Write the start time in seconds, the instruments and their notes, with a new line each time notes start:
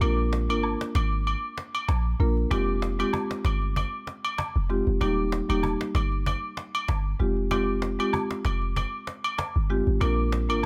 0.01 808-style bass A#1, marimba A#3 D4 F4 A#4, high agogo
0.33 cajon slap
0.49 808-style bass G#1, marimba A#3 D4 F4 A#4, cajon slap, high agogo
0.63 cajon slap, low woodblock
0.81 cajon slap
0.95 808-style bass G#1, cajon slap, high agogo
1.12 cajon slap
1.27 cajon slap, high agogo
1.58 cajon slap
1.75 cajon slap, high agogo
1.88 808-style bass A#1, cajon slap, low woodblock
2.20 808-style bass A#1, marimba A#3 D4 F4 A#4, cajon slap
2.37 cajon slap
2.51 808-style bass F1, marimba G#3 C4 F4 G4, cajon bass, high agogo
2.82 cajon slap
2.99 marimba G#3 C4 F4 G4, cajon slap, high agogo
3.13 cajon bass, low woodblock
3.31 cajon slap
3.45 808-style bass G1, cajon slap, high agogo
3.62 cajon slap
3.76 cajon bass, high agogo
4.07 cajon slap
4.25 cajon slap, high agogo
4.38 cajon bass, cajon slap, low woodblock
4.56 808-style bass F1
4.70 marimba G#3 C4 F4 G4, cajon slap
4.87 808-style bass F1, cajon slap
5.01 808-style bass D#1, marimba G3 A#3 D#4 G4, cajon bass, high agogo
5.32 cajon slap
5.49 808-style bass D#1, marimba G3 A#3 D#4 G4, cajon slap, high agogo
5.63 cajon bass, low woodblock
5.81 cajon slap
5.95 808-style bass G1, cajon slap, high agogo
6.12 cajon slap
6.26 cajon bass, high agogo
6.57 cajon slap
6.75 cajon slap, high agogo
6.88 808-style bass G1, cajon bass, cajon slap, low woodblock
7.20 808-style bass F1, marimba G#3 C4 F4 G4, cajon slap
7.37 cajon slap
7.51 marimba G#3 C4 F4 G4, cajon bass, high agogo
7.82 cajon slap
7.99 marimba G#3 C4 F4 G4, cajon slap, high agogo
8.13 cajon bass, low woodblock
8.31 cajon slap
8.45 808-style bass F1, cajon slap, high agogo
8.62 cajon slap
8.76 cajon bass, high agogo
9.07 cajon slap
9.24 cajon slap, high agogo
9.38 cajon bass, cajon slap, low woodblock
9.56 808-style bass G1
9.70 marimba G#3 C4 F4 G4, cajon slap
9.87 808-style bass G#1, cajon slap
10.01 808-style bass A#1, marimba A#3 D4 F4 A#4, cajon bass, high agogo
10.32 cajon slap
10.49 808-style bass G#1, marimba A#3 D4 F4 A#4, cajon slap, high agogo